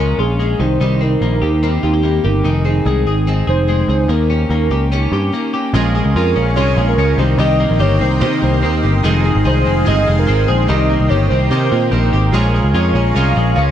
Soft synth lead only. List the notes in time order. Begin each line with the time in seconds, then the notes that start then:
0.00 A#4
0.20 G#4
0.39 G#4
0.60 C5
1.02 A#4
1.63 A#4
1.83 G4
2.04 G4
2.24 A#4
2.65 G#4
3.29 G#4
3.49 C5
4.11 A#4
6.16 A#4
6.56 C#5
6.89 A#4
7.19 C5
7.39 D#5
7.81 C#5
8.01 C5
8.22 C5
8.43 C5
8.64 A#4
9.47 C5
9.88 D#5
10.19 A#4
10.48 C5
10.69 D#5
11.10 C#5
11.30 C5
11.51 C5
11.91 A#4
12.74 C#5
13.15 F5
13.56 F5